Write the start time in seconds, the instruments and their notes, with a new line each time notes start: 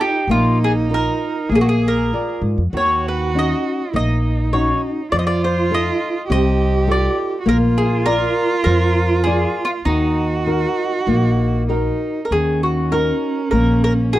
Already playing: nylon-string guitar D#4 F4 A4, cello D#4
0.01 mandolin G4
0.28 upright bass A#1, nylon-string guitar A#3, cello D#4, mandolin F4
0.64 mandolin G#4
0.89 nylon-string guitar D#4 F4 A#4
0.94 mandolin A#4
1.49 upright bass A#1, nylon-string guitar A#3, cello G#4
1.55 mandolin G#4
1.61 mandolin F#4
1.69 mandolin G#4
1.88 mandolin A#4
2.13 nylon-string guitar F4 A#4 D5
2.42 upright bass G#2
2.58 upright bass F2
2.72 upright bass D#2, nylon-string guitar D#3, cello F#4
2.77 mandolin C#5
3.08 mandolin B4
3.35 nylon-string guitar C#4 D#4 F#4
3.39 mandolin D#5
3.93 upright bass A#1, nylon-string guitar A#3, cello D#4, mandolin D#5
4.53 nylon-string guitar C#4 D#4 F#4, mandolin C#5
5.12 upright bass F2, nylon-string guitar F3, cello F4, mandolin D5
5.19 mandolin D#5
5.27 mandolin D5
5.44 mandolin C5
5.71 nylon-string guitar D#4 F4 A4, mandolin D#5
6.28 upright bass C2, nylon-string guitar C3, cello G4
6.32 mandolin D#5
6.87 nylon-string guitar D#4 F4 A4
6.91 mandolin D5
7.40 cello F#4
7.46 upright bass A#1, nylon-string guitar A#3, cello F4, mandolin A#4
7.78 mandolin G#4
8.05 nylon-string guitar F4 A#4 D5, mandolin A#4
8.64 upright bass F2, nylon-string guitar F3, mandolin A#4
9.24 nylon-string guitar F4 A#4 D5, mandolin G#4
9.65 mandolin F4
9.85 upright bass D#2, nylon-string guitar D#3, mandolin D#4, cello F#4
10.46 nylon-string guitar D#4 F#4 A#4
11.07 upright bass A#1, nylon-string guitar A#3
11.68 cello D#4, nylon-string guitar D#4 F#4 A#4
12.25 mandolin A#4
12.31 upright bass D#2, nylon-string guitar D#3, cello C#4, mandolin G#4
12.63 mandolin F#4
12.92 nylon-string guitar D#4 F#4 A#4, mandolin A#4
13.51 upright bass A#1, nylon-string guitar A#3, mandolin A#4
13.84 mandolin A#4
14.13 nylon-string guitar D#4 F#4 A#4, mandolin G#4